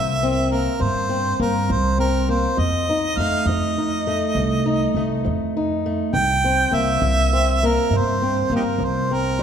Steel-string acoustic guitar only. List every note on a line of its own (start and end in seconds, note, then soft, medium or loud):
0.00 0.46 E3 medium
0.00 0.51 A#3 medium
0.00 0.22 C4 medium
0.23 1.09 C4 medium
0.52 1.38 A#3 medium
0.80 1.34 C3 medium
1.09 1.98 C4 medium
1.40 2.28 A#3 medium
1.69 2.23 E3 medium
1.98 2.89 C4 medium
2.29 2.55 A#3 medium
2.57 3.11 F2 medium
2.89 3.77 D#4 medium
3.20 4.06 A3 medium
3.49 4.01 F3 medium
3.78 4.65 D#4 medium
4.07 4.95 A3 medium
4.37 4.90 F2 medium
4.66 5.55 D#4 medium
4.96 5.85 A3 medium
5.25 5.78 F3 medium
5.57 6.11 D#4 medium
5.86 6.11 A3 medium
6.14 6.67 C3 medium
6.44 7.33 C4 medium
6.71 7.63 A#3 medium
7.02 7.55 E3 medium
7.33 8.22 C4 medium
7.63 8.50 A#3 medium
7.93 8.46 C3 medium
8.22 9.11 C4 medium
8.51 9.38 A#3 medium
8.79 9.33 E3 medium
9.11 9.43 C4 medium
9.39 9.43 G3 medium